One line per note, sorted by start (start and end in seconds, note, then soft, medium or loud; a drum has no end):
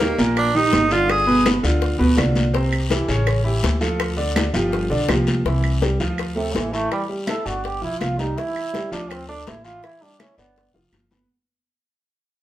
0.00 0.13 D#2 medium
0.00 0.15 D#3 medium
0.00 0.20 A#3 medium
0.00 0.15 D#4 medium
0.00 0.15 G4 medium
0.00 high bongo medium
0.00 high conga medium
0.00 short guiro medium
0.18 0.69 A#1 medium
0.18 0.48 A#2 medium
0.18 0.48 A#3 medium
0.18 0.49 A#4 medium
0.18 high conga soft
0.18 short guiro medium
0.37 0.57 D4 medium
0.37 high bongo soft
0.37 high conga soft
0.37 long guiro medium
0.37 claves medium
0.55 0.84 D#3 medium
0.55 0.85 D#4 medium
0.55 0.93 D#4 loud
0.55 0.85 G4 medium
0.55 high conga soft
0.73 1.58 G1 medium
0.73 high bongo medium
0.73 low bongo medium
0.73 high conga medium
0.73 short guiro medium
0.91 1.21 D3 medium
0.91 1.21 D4 medium
0.91 1.21 F4 medium
0.91 1.12 F4 medium
0.91 high conga soft
0.91 short guiro medium
1.09 1.46 G#4 medium
1.09 high bongo medium
1.09 high conga soft
1.09 long guiro medium
1.09 claves medium
1.27 1.57 B2 medium
1.27 1.57 B3 medium
1.27 1.57 B4 medium
1.27 high conga soft
1.46 high bongo medium
1.46 high conga medium
1.46 short guiro medium
1.46 claves medium
1.63 1.97 D2 medium
1.63 1.93 D3 medium
1.63 1.93 D4 medium
1.63 1.93 F4 medium
1.63 high bongo soft
1.63 high conga soft
1.63 short guiro medium
1.82 high bongo medium
1.82 high conga soft
1.82 long guiro medium
1.98 2.17 D2 medium
1.98 2.14 B2 medium
1.98 2.14 B3 medium
1.98 2.14 B4 medium
1.98 high bongo soft
1.98 high conga soft
2.16 3.03 C2 medium
2.16 2.47 D3 medium
2.16 2.47 D4 medium
2.16 2.47 F4 medium
2.16 high bongo medium
2.16 low bongo medium
2.16 high conga medium
2.16 short guiro medium
2.16 claves medium
2.35 high bongo soft
2.35 high conga medium
2.35 short guiro medium
2.53 2.84 C3 medium
2.53 2.84 C4 medium
2.53 2.84 C5 medium
2.53 high bongo medium
2.53 high conga soft
2.53 long guiro medium
2.73 high conga soft
2.73 claves medium
2.90 3.05 E3 medium
2.90 3.05 E4 medium
2.90 3.06 G4 medium
2.90 high bongo medium
2.90 high conga medium
2.90 short guiro medium
3.08 3.59 A1 medium
3.08 3.38 C#3 medium
3.08 3.38 C#4 medium
3.08 3.39 C#5 medium
3.08 high conga soft
3.08 short guiro medium
3.27 high bongo medium
3.27 high conga soft
3.27 long guiro medium
3.27 claves medium
3.44 3.74 E3 medium
3.44 3.75 E4 medium
3.44 3.75 G4 medium
3.44 high conga soft
3.63 4.48 D2 medium
3.63 high bongo medium
3.63 low bongo medium
3.63 high conga medium
3.63 short guiro medium
3.81 4.11 F3 medium
3.81 4.11 F4 medium
3.81 4.11 A4 medium
3.81 high conga soft
3.81 short guiro medium
4.00 high bongo medium
4.00 high conga soft
4.00 long guiro medium
4.00 claves medium
4.17 4.47 D3 medium
4.17 4.47 D4 medium
4.17 4.47 D5 medium
4.17 high conga soft
4.36 high bongo medium
4.36 high conga loud
4.36 short guiro medium
4.36 claves medium
4.53 4.88 G1 medium
4.53 4.84 F3 medium
4.53 4.84 F4 medium
4.53 4.84 G4 medium
4.53 high bongo soft
4.53 high conga soft
4.53 short guiro medium
4.72 high bongo medium
4.72 high conga soft
4.72 long guiro medium
4.90 5.07 B1 medium
4.90 5.05 D3 medium
4.90 5.06 D4 medium
4.90 5.06 D5 medium
4.90 high bongo soft
4.90 high conga soft
5.08 5.41 C2 medium
5.08 5.38 F3 medium
5.08 5.39 F4 medium
5.08 5.39 G4 medium
5.08 high bongo medium
5.08 low bongo medium
5.08 high conga medium
5.08 short guiro medium
5.08 claves medium
5.27 high bongo soft
5.27 high conga medium
5.27 short guiro medium
5.45 5.96 C2 medium
5.45 5.75 E3 medium
5.45 5.75 E4 medium
5.45 high bongo medium
5.45 high conga soft
5.45 long guiro medium
5.64 high conga soft
5.64 claves medium
5.82 5.97 G3 medium
5.82 5.97 G4 medium
5.82 high bongo medium
5.82 high conga medium
5.82 short guiro medium
6.00 6.51 D2 medium
6.00 6.30 F3 medium
6.00 6.30 F4 medium
6.00 high conga soft
6.00 short guiro medium
6.18 high bongo medium
6.18 high conga soft
6.18 long guiro medium
6.18 claves medium
6.35 6.57 C3 medium
6.35 6.66 A3 medium
6.35 6.66 A4 medium
6.35 high conga soft
6.54 6.87 A1 medium
6.54 6.74 E3 medium
6.54 high bongo medium
6.54 low bongo medium
6.54 high conga medium
6.54 short guiro medium
6.72 7.02 E3 medium
6.72 6.91 A3 loud
6.72 7.02 E4 medium
6.72 high conga soft
6.72 short guiro medium
6.91 7.03 G3 medium
6.91 high bongo medium
6.91 high conga soft
6.91 long guiro medium
6.91 claves medium
7.09 7.24 G3 medium
7.09 7.24 G4 medium
7.09 high conga soft
7.26 7.42 E4 medium
7.26 7.48 A4 medium
7.26 7.42 E5 medium
7.26 high bongo medium
7.26 high conga medium
7.26 short guiro medium
7.26 claves medium
7.45 7.80 G1 medium
7.45 7.75 D4 medium
7.45 7.67 F#4 medium
7.45 7.75 D5 medium
7.45 high bongo soft
7.45 high conga soft
7.45 short guiro medium
7.64 7.83 G4 loud
7.64 high bongo medium
7.64 high conga soft
7.64 long guiro medium
7.81 7.99 B1 medium
7.81 8.12 F3 medium
7.81 8.02 E4 medium
7.81 8.12 F4 medium
7.81 high bongo soft
7.81 high conga soft
8.00 8.33 C2 medium
8.00 8.19 F4 medium
8.00 high bongo medium
8.00 low bongo medium
8.00 high conga medium
8.00 short guiro medium
8.00 claves medium
8.18 8.33 G3 medium
8.18 8.38 D#4 medium
8.18 8.33 G4 medium
8.18 high bongo soft
8.18 high conga medium
8.18 short guiro medium
8.37 8.67 E3 medium
8.37 8.91 E4 medium
8.37 8.67 E4 medium
8.37 high bongo medium
8.37 high conga soft
8.37 long guiro medium
8.56 high conga soft
8.56 claves medium
8.73 8.88 G3 medium
8.73 8.88 G4 medium
8.73 high bongo soft
8.73 high conga medium
8.73 short guiro medium
8.92 9.43 D2 medium
8.92 9.21 F3 medium
8.92 9.12 D4 medium
8.92 9.22 F4 medium
8.92 high conga soft
8.92 short guiro medium
9.10 9.28 C4 medium
9.10 high bongo medium
9.10 high conga soft
9.10 long guiro medium
9.10 claves medium
9.28 9.58 A3 medium
9.28 9.49 D4 medium
9.28 9.58 A4 medium
9.28 high conga soft
9.47 9.79 A1 medium
9.47 9.65 E4 medium
9.47 high bongo medium
9.47 low bongo medium
9.47 high conga medium
9.47 short guiro medium
9.64 9.94 E3 medium
9.64 9.94 E4 medium
9.64 9.85 F4 loud
9.64 high conga soft
9.64 short guiro medium
9.83 10.03 E4 medium
9.83 high bongo medium
9.83 high conga soft
9.83 long guiro medium
9.83 claves soft
10.01 10.16 G3 medium
10.01 10.22 D4 medium
10.01 10.16 G4 medium
10.01 high conga soft
10.19 10.38 C#4 medium
10.19 10.34 E4 medium
10.19 10.34 E5 medium
10.19 high bongo soft
10.19 high conga medium
10.19 short guiro soft
10.19 claves medium
10.37 10.72 G1 medium
10.37 10.72 B3 medium
10.37 10.67 D4 medium
10.37 10.67 D5 medium
10.37 high bongo soft
10.37 high conga soft
10.37 short guiro medium
10.56 high bongo soft
10.56 high conga soft
10.56 long guiro medium
10.74 10.91 F1 soft
10.74 11.04 F3 medium
10.74 11.04 F4 medium
10.74 high bongo medium
10.74 high conga soft
10.92 11.25 G1 medium
10.92 low bongo medium
10.92 high conga medium
10.92 short guiro medium
10.92 claves medium
11.11 11.26 B3 medium
11.11 11.26 B4 medium
11.11 low bongo medium
11.11 high conga medium
11.11 short guiro medium